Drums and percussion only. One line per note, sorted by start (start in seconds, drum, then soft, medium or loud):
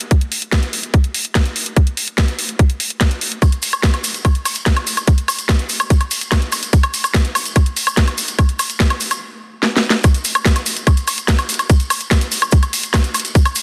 0.01 closed hi-hat medium
0.11 kick loud
0.11 closed hi-hat loud
0.21 closed hi-hat medium
0.32 open hi-hat loud
0.42 closed hi-hat soft
0.52 kick loud
0.52 snare loud
0.52 closed hi-hat medium
0.63 closed hi-hat soft
0.73 open hi-hat loud
0.83 closed hi-hat soft
0.94 kick loud
0.94 closed hi-hat medium
1.04 closed hi-hat medium
1.14 open hi-hat loud
1.25 closed hi-hat medium
1.35 kick loud
1.35 snare loud
1.35 closed hi-hat medium
1.46 closed hi-hat soft
1.56 open hi-hat loud
1.66 closed hi-hat medium
1.77 kick loud
1.77 closed hi-hat medium
1.87 closed hi-hat medium
1.97 open hi-hat loud
2.08 closed hi-hat soft
2.18 kick loud
2.18 snare loud
2.18 closed hi-hat medium
2.28 closed hi-hat medium
2.39 open hi-hat loud
2.49 closed hi-hat medium
2.59 kick loud
2.59 closed hi-hat medium
2.70 closed hi-hat medium
2.80 open hi-hat loud
2.90 closed hi-hat soft
3.01 kick loud
3.01 snare loud
3.01 closed hi-hat medium
3.11 closed hi-hat medium
3.21 open hi-hat loud
3.32 closed hi-hat medium
3.42 kick loud
3.42 closed hi-hat medium
3.42 high woodblock soft
3.42 maracas soft
3.52 closed hi-hat medium
3.62 open hi-hat loud
3.62 maracas medium
3.73 closed hi-hat soft
3.73 high woodblock medium
3.73 maracas medium
3.83 kick loud
3.83 snare loud
3.83 closed hi-hat medium
3.83 maracas soft
3.94 closed hi-hat medium
3.94 high woodblock soft
4.04 open hi-hat loud
4.04 maracas loud
4.14 closed hi-hat soft
4.14 maracas soft
4.25 kick loud
4.25 closed hi-hat medium
4.25 high woodblock medium
4.25 maracas soft
4.35 closed hi-hat soft
4.45 open hi-hat loud
4.45 high woodblock soft
4.45 maracas loud
4.55 closed hi-hat medium
4.55 maracas medium
4.66 kick loud
4.66 snare loud
4.66 closed hi-hat medium
4.76 closed hi-hat medium
4.76 high woodblock medium
4.87 open hi-hat loud
4.87 maracas loud
4.97 closed hi-hat medium
4.97 high woodblock soft
4.97 maracas medium
5.07 kick loud
5.07 closed hi-hat medium
5.07 maracas soft
5.18 closed hi-hat medium
5.28 open hi-hat loud
5.28 high woodblock medium
5.28 maracas medium
5.39 closed hi-hat medium
5.39 maracas soft
5.49 kick loud
5.49 snare loud
5.49 closed hi-hat medium
5.49 high woodblock soft
5.49 maracas soft
5.59 closed hi-hat medium
5.69 open hi-hat loud
5.69 maracas medium
5.80 closed hi-hat medium
5.80 high woodblock medium
5.80 maracas medium
5.90 kick loud
5.90 closed hi-hat medium
5.90 maracas soft
6.01 closed hi-hat medium
6.01 high woodblock soft
6.11 open hi-hat loud
6.11 maracas medium
6.21 closed hi-hat medium
6.21 maracas soft
6.32 kick loud
6.32 snare loud
6.32 closed hi-hat medium
6.32 high woodblock medium
6.32 maracas soft
6.42 closed hi-hat medium
6.52 open hi-hat loud
6.52 high woodblock soft
6.52 maracas medium
6.63 closed hi-hat medium
6.63 maracas medium
6.73 kick loud
6.73 closed hi-hat loud
6.73 maracas soft
6.83 closed hi-hat medium
6.83 high woodblock medium
6.94 open hi-hat loud
6.94 maracas medium
7.04 closed hi-hat medium
7.04 high woodblock soft
7.04 maracas medium
7.14 kick loud
7.14 snare loud
7.14 closed hi-hat medium
7.14 maracas soft
7.25 closed hi-hat medium
7.35 open hi-hat loud
7.35 high woodblock medium
7.35 maracas medium
7.45 closed hi-hat medium
7.45 maracas medium
7.55 kick loud
7.55 closed hi-hat loud
7.55 high woodblock soft
7.55 maracas soft
7.66 closed hi-hat medium
7.76 open hi-hat loud
7.76 maracas medium
7.87 closed hi-hat medium
7.87 high woodblock medium
7.87 maracas medium
7.97 kick loud
7.97 snare loud
7.97 closed hi-hat loud
7.97 maracas soft
8.08 closed hi-hat medium
8.08 high woodblock soft
8.18 open hi-hat loud
8.18 maracas medium
8.28 closed hi-hat medium
8.28 maracas medium
8.39 kick loud
8.39 closed hi-hat loud
8.39 high woodblock medium
8.39 maracas soft
8.49 closed hi-hat medium
8.59 open hi-hat loud
8.59 high woodblock soft
8.59 maracas medium
8.70 closed hi-hat medium
8.70 maracas soft
8.80 kick loud
8.80 snare loud
8.80 closed hi-hat medium
8.80 maracas soft
8.90 closed hi-hat medium
8.90 high woodblock medium
9.00 open hi-hat loud
9.00 maracas medium
9.10 closed hi-hat medium
9.10 high woodblock soft
9.10 maracas medium
9.63 snare medium
9.77 snare medium
9.90 snare loud
10.04 kick loud
10.04 closed hi-hat medium
10.04 high woodblock soft
10.04 maracas medium
10.14 closed hi-hat medium
10.14 maracas soft
10.24 open hi-hat loud
10.24 maracas loud
10.35 closed hi-hat medium
10.35 high woodblock medium
10.35 maracas soft
10.45 kick loud
10.45 snare loud
10.45 closed hi-hat medium
10.45 maracas medium
10.56 closed hi-hat medium
10.56 high woodblock soft
10.56 maracas soft
10.66 open hi-hat loud
10.66 maracas loud
10.77 closed hi-hat medium
10.77 maracas soft
10.87 kick loud
10.87 closed hi-hat medium
10.87 high woodblock medium
10.87 maracas medium
10.97 closed hi-hat medium
10.97 maracas soft
11.07 open hi-hat loud
11.07 high woodblock soft
11.07 maracas medium
11.18 closed hi-hat medium
11.18 maracas soft
11.28 kick loud
11.28 snare loud
11.28 closed hi-hat medium
11.28 maracas soft
11.39 closed hi-hat medium
11.39 high woodblock medium
11.39 maracas soft
11.49 open hi-hat loud
11.49 maracas medium
11.54 closed hi-hat medium
11.59 closed hi-hat medium
11.59 high woodblock soft
11.59 maracas soft
11.70 kick loud
11.70 closed hi-hat medium
11.70 maracas medium
11.80 closed hi-hat medium
11.80 maracas soft
11.90 open hi-hat loud
11.90 high woodblock medium
11.90 maracas medium
12.00 closed hi-hat medium
12.00 maracas soft
12.11 kick loud
12.11 snare loud
12.11 closed hi-hat medium
12.11 high woodblock soft
12.11 maracas medium
12.21 closed hi-hat medium
12.21 maracas soft
12.32 open hi-hat loud
12.32 maracas loud
12.42 closed hi-hat medium
12.42 high woodblock medium
12.42 maracas soft
12.51 kick loud
12.51 closed hi-hat medium
12.51 maracas medium
12.62 closed hi-hat medium
12.62 high woodblock soft
12.62 maracas soft
12.73 open hi-hat loud
12.73 maracas loud
12.83 closed hi-hat medium
12.83 maracas soft
12.94 kick loud
12.94 snare loud
12.94 closed hi-hat medium
12.94 high woodblock medium
12.94 maracas medium
13.04 closed hi-hat medium
13.04 maracas soft
13.14 open hi-hat loud
13.14 high woodblock soft
13.14 maracas medium
13.20 closed hi-hat medium
13.25 closed hi-hat medium
13.25 maracas soft
13.35 kick loud
13.35 closed hi-hat medium
13.35 maracas medium
13.45 closed hi-hat medium
13.45 high woodblock medium
13.45 maracas soft
13.55 open hi-hat loud
13.55 maracas medium